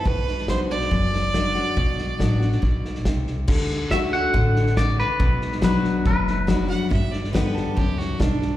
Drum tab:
CC |----------------|----------------|x---------------|----------------|
HH |----p-------p---|----p-------p---|----p-------p---|----p-------p---|
SD |o-ooo-ooo-o-o-o-|o-o-o-ooo-ooo-o-|o-o-o-o-o-ooo-o-|o-ooo-o-o-o-o-o-|
BD |o---o---o---o---|o---o---o---o---|o---o---o---o---|o---o---o---o---|

CC |----------------|
HH |----p-------p---|
SD |o-ooo-o-o-o-o-o-|
BD |o---o---o---o---|